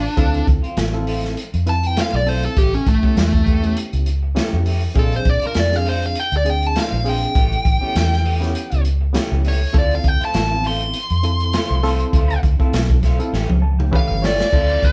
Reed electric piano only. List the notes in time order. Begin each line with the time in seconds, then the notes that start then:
0.17 C4 E4 F4 A4
0.93 C4 E4 F4 A4
1.66 C4 E4 F4 B4
2.26 C4 E4 F4 A4
3.02 B3 C#4 E4 G4
3.62 B3 C#4 E4 G4
4.35 B3 C#4 E4 G4
4.94 C4 D4 F4 G#4
5.71 C4 D4 F4 G#4
6.45 C4 D4 F4 G#4
7.04 C4 D4 F4 G#4
7.81 B3 C#4 E4 G4
8.40 B3 C#4 E4 G4
9.13 B3 C#4 E4 G4
9.73 C4 E4 F4 A4
10.50 B3 C4 E4 F4
11.23 C4 E4 F4 A4
11.83 C4 E4 F4 A4
12.59 C4 E4 F4 A4
13.19 C4 E4 F4 A4
13.62 A5
13.79 G5
13.91 E3 C#4 G4 B4 E5
14.22 C#5
14.52 C4 E4 F4 A4